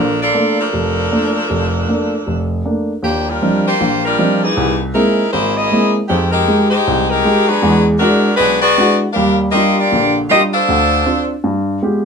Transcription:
Already playing: A#1 F3 D4 A4 A#4
0.22 A#3 F4 A4 D5
0.34 A3 A#3 D4
0.59 F3 D4 A4 A#4
0.73 F1
1.11 A3 A#3 D4
1.50 F1
1.88 A3 A#3 D4
2.27 F1
2.65 A3 A#3 D4
3.03 D#2 F3 A#3 D4 G4
3.28 G3 D4 F4 A#4
3.42 F3 G3 C4 D4 D#4
3.66 A#3 F4 G4 C5
3.80 A#1
4.05 G3 D4 F4 A#4
4.19 F3 G3 C4 D4 D#4
4.43 E3 A#3 D#4 G#4
4.57 C2
4.93 G#3 A#3 C4 D#4 E4 A#4
5.32 G#1 A#3 E4 G#4 C5
5.56 A#3 E4 G#4 D#5
5.71 G#3 A#3 C4 E4
6.07 F2 D#3 G#3 C4 G4
6.31 G#3 D#4 G4 A#4
6.48 G#3 D#4 F4 G4
6.70 G#3 D#4 G4 C5
6.87 C2
7.09 G#3 D#4 G4 A#4
7.25 G#3 D#4 F4 G4
7.47 F#3 B3 D4 G#4
7.62 E2 G#3
7.98 G#3 D4 E4 F#4 A#4
8.36 B1 G#3 D4 F#4 B4
8.61 B3 F#4 G#4 D5
8.78 G#3 D4 E4 F#4
9.13 D#2 G3 D4 G4 A#4 F5
9.51 G3 A#3 D4 D#4 F4 G4 D#5
9.78 A#3 F4 G4 D5
9.92 A#1 D3
10.30 G3 A#3 D4 D#4 F4 G4 D#5
10.53 D4 A4 C5 F5
10.68 D2 D3
11.06 C4 D4 F4
11.44 G2
11.82 G#3 B3 F4 G4

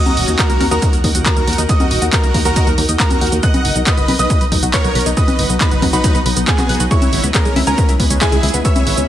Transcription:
Already playing: D#3 D#4 F#4 A#4 D#5 D#6
0.06 D#2 A#4, closed hi-hat, high conga, shaker
0.17 D#1, open hi-hat
0.28 D#2 D#4, closed hi-hat, shaker
0.39 F#4 A#4 D#5 A#5, kick, clap, closed hi-hat, shaker
0.50 C#2 A#3, closed hi-hat, shaker
0.60 D#2 A#4, open hi-hat, high conga
0.71 D#2 F#4 A#4 D#5 A#5, closed hi-hat, shaker
0.82 D#4, kick, closed hi-hat, shaker
0.93 D#2 A#4, closed hi-hat, shaker
1.04 D#2 D#4, kick, open hi-hat
1.15 D#2 F#4, closed hi-hat, shaker
1.26 A#3 F#4 A#4 A#5, kick, clap, closed hi-hat, shaker
1.36 D#2 A#3, closed hi-hat, shaker
1.47 D#2 A#4, open hi-hat
1.53 closed hi-hat
1.58 D#2 D#4, closed hi-hat, shaker
1.69 D#4 F#4 D#5 D#6, kick, closed hi-hat, shaker
1.80 D#2 A#4, closed hi-hat, high conga, shaker
1.91 D#1 D#4, open hi-hat
2.02 D#2 F#4, closed hi-hat, shaker
2.13 A#3 F#4 A#4 A#5, kick, clap, closed hi-hat, shaker
2.23 C#2 A#3, closed hi-hat, shaker
2.34 D#2 A#3, kick, open hi-hat
2.45 D#2 F#4 A#4 A#5, closed hi-hat, shaker
2.56 D#4, kick, closed hi-hat, shaker
2.67 D#2 A#4, closed hi-hat, shaker
2.78 D#2 A#3, open hi-hat
2.89 D#2 D#5, closed hi-hat, shaker
3.00 A#3 F#4 A#4 A#5, kick, clap, closed hi-hat, shaker
3.10 D#2 A#4, closed hi-hat, high conga, shaker
3.21 D#2 F#4, open hi-hat
3.27 closed hi-hat
3.32 D#2 A#3, closed hi-hat, shaker
3.43 F#3 B3 D#5 F#5 F#6, kick, closed hi-hat, shaker
3.54 B1 B4, closed hi-hat, high conga, shaker
3.65 F#1, open hi-hat
3.76 B1 D#4, closed hi-hat, shaker
3.87 B4 D#5 D#6, kick, clap, closed hi-hat, shaker
3.97 F#1 B3, closed hi-hat, shaker
4.08 B1 B4, open hi-hat, high conga
4.19 B1 B4 D#5 D#6, closed hi-hat, shaker
4.30 D#4, kick, closed hi-hat, shaker
4.41 B1 B4, closed hi-hat, shaker
4.52 B1 D#4, kick, open hi-hat
4.63 B1 F#4, closed hi-hat, shaker
4.74 B3 A#4 C#5 C#6, kick, clap, closed hi-hat, shaker
4.84 B1 B3, closed hi-hat, shaker
4.95 B1 B4, open hi-hat
5.01 closed hi-hat
5.06 B1 D#4, closed hi-hat, shaker
5.17 D#4 B4 D#5 D#6, kick, closed hi-hat, shaker
5.28 B1 B4, closed hi-hat, high conga, shaker
5.39 F#1 D#4, open hi-hat
5.50 B1 F#4, closed hi-hat, shaker
5.60 B3 D#4 B4 B5, kick, clap, closed hi-hat, shaker
5.71 F#1 B3, closed hi-hat, shaker
5.82 B1 B3, kick, open hi-hat, high conga
5.93 B1 D#4 F#4 B4 B5, closed hi-hat, shaker
6.04 D#4, kick, closed hi-hat, shaker
6.15 B1 B4, closed hi-hat, shaker
6.26 B1 B4, open hi-hat
6.37 B1 B3, closed hi-hat, shaker
6.47 B3 F#4 G#4 G#5, kick, clap, closed hi-hat, shaker
6.58 B1 F#4, clap, closed hi-hat, high conga, shaker
6.69 B1 F#5, open hi-hat
6.75 closed hi-hat
6.80 B1 F#4, closed hi-hat, shaker
6.91 C#3 G#3 B3 E4 C#5 C#6, kick, closed hi-hat, shaker
7.02 C#2 E4, closed hi-hat, high conga, shaker
7.13 G#1, open hi-hat
7.24 C#2 B3, closed hi-hat, shaker
7.34 C#4 G#4 A#4 A#5, kick, clap, closed hi-hat, shaker
7.45 B1 G#3, closed hi-hat, shaker
7.56 C#2 E4, open hi-hat, high conga
7.67 C#2 C#4 G#4 A#4 A#5, closed hi-hat, shaker
7.78 B3, kick, closed hi-hat, shaker
7.89 C#2 E4, closed hi-hat, shaker
8.00 C#2 B3, kick, open hi-hat
8.10 C#2 C#4, closed hi-hat, shaker
8.21 G#3 E4 G#4 G#5, kick, clap, closed hi-hat, shaker
8.32 C#2 G#3, closed hi-hat, shaker
8.43 C#2 E4, open hi-hat
8.49 closed hi-hat
8.54 C#2 B3, closed hi-hat, shaker
8.65 B3 C#5 E5 E6, kick, closed hi-hat, shaker
8.76 C#2 E4, closed hi-hat, high conga, shaker
8.87 G#1 B3, open hi-hat
8.97 C#2 C#4, closed hi-hat, shaker

